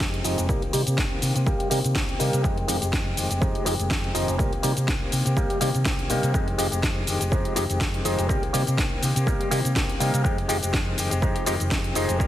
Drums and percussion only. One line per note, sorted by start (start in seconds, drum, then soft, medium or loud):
0.00 kick loud
0.00 snare loud
0.00 cabasa soft
0.14 closed hi-hat medium
0.24 open hi-hat medium
0.24 cabasa medium
0.38 closed hi-hat medium
0.38 cabasa soft
0.49 kick loud
0.49 cabasa soft
0.62 closed hi-hat soft
0.73 open hi-hat loud
0.73 cabasa medium
0.87 closed hi-hat medium
0.87 cabasa soft
0.98 kick loud
0.98 snare loud
0.98 cabasa soft
1.22 open hi-hat medium
1.22 cabasa medium
1.36 closed hi-hat medium
1.36 cabasa soft
1.47 kick loud
1.47 cabasa soft
1.60 closed hi-hat medium
1.71 open hi-hat loud
1.71 cabasa medium
1.84 closed hi-hat medium
1.84 cabasa soft
1.95 kick loud
1.95 snare loud
1.95 cabasa soft
2.09 closed hi-hat medium
2.20 open hi-hat medium
2.20 cabasa medium
2.33 closed hi-hat medium
2.33 cabasa soft
2.44 kick loud
2.44 cabasa soft
2.58 closed hi-hat soft
2.68 open hi-hat loud
2.68 cabasa medium
2.82 closed hi-hat medium
2.82 cabasa soft
2.93 kick loud
2.93 snare loud
2.93 cabasa soft
3.17 open hi-hat medium
3.17 cabasa medium
3.31 closed hi-hat medium
3.31 cabasa soft
3.42 kick loud
3.42 cabasa soft
3.55 closed hi-hat medium
3.66 open hi-hat loud
3.66 cabasa medium
3.80 closed hi-hat medium
3.80 cabasa soft
3.90 kick loud
3.90 snare loud
3.90 cabasa soft
4.04 closed hi-hat soft
4.15 open hi-hat medium
4.15 cabasa medium
4.28 closed hi-hat medium
4.28 cabasa soft
4.39 kick loud
4.39 cabasa soft
4.53 closed hi-hat soft
4.63 open hi-hat loud
4.63 cabasa medium
4.77 closed hi-hat medium
4.77 cabasa soft
4.88 kick loud
4.88 snare loud
4.88 cabasa soft
5.12 open hi-hat medium
5.12 cabasa medium
5.26 closed hi-hat medium
5.26 cabasa soft
5.37 kick loud
5.37 cabasa soft
5.50 closed hi-hat soft
5.61 open hi-hat loud
5.61 cabasa medium
5.75 closed hi-hat medium
5.75 cabasa soft
5.85 kick loud
5.85 snare loud
5.85 cabasa soft
5.99 closed hi-hat soft
6.10 open hi-hat medium
6.10 cabasa medium
6.23 closed hi-hat medium
6.23 cabasa soft
6.34 kick loud
6.34 cabasa soft
6.48 closed hi-hat soft
6.59 open hi-hat loud
6.59 cabasa medium
6.72 closed hi-hat medium
6.72 cabasa soft
6.83 kick loud
6.83 snare loud
6.83 cabasa soft
7.07 open hi-hat medium
7.07 cabasa medium
7.21 closed hi-hat medium
7.21 cabasa soft
7.32 kick loud
7.32 cabasa soft
7.45 closed hi-hat medium
7.56 open hi-hat loud
7.56 cabasa medium
7.70 closed hi-hat medium
7.70 cabasa soft
7.81 kick loud
7.81 snare loud
7.81 cabasa soft
7.94 closed hi-hat soft
8.05 open hi-hat medium
8.05 cabasa medium
8.19 closed hi-hat medium
8.19 cabasa soft
8.29 kick loud
8.29 cabasa soft
8.43 closed hi-hat soft
8.54 open hi-hat loud
8.54 cabasa medium
8.67 closed hi-hat medium
8.67 cabasa soft
8.78 kick loud
8.78 snare loud
8.78 cabasa soft
9.03 open hi-hat medium
9.03 cabasa medium
9.16 closed hi-hat medium
9.16 cabasa soft
9.27 kick loud
9.27 cabasa soft
9.41 closed hi-hat medium
9.51 open hi-hat loud
9.51 cabasa medium
9.65 closed hi-hat medium
9.65 cabasa soft
9.76 kick loud
9.76 snare loud
9.76 cabasa soft
9.89 closed hi-hat medium
10.00 open hi-hat medium
10.00 cabasa medium
10.14 closed hi-hat medium
10.14 cabasa soft
10.25 kick loud
10.25 cabasa soft
10.38 closed hi-hat soft
10.49 open hi-hat loud
10.49 cabasa medium
10.63 closed hi-hat medium
10.63 cabasa soft
10.73 kick loud
10.73 snare loud
10.73 cabasa soft
10.98 open hi-hat medium
10.98 cabasa medium
11.11 closed hi-hat medium
11.11 cabasa soft
11.22 kick loud
11.22 cabasa soft
11.36 closed hi-hat medium
11.46 open hi-hat loud
11.46 cabasa medium
11.60 closed hi-hat medium
11.60 cabasa soft
11.71 kick loud
11.71 snare loud
11.71 cabasa soft
11.84 closed hi-hat medium
11.95 open hi-hat medium
11.95 cabasa medium
12.09 closed hi-hat medium
12.09 cabasa soft
12.20 kick loud
12.20 cabasa soft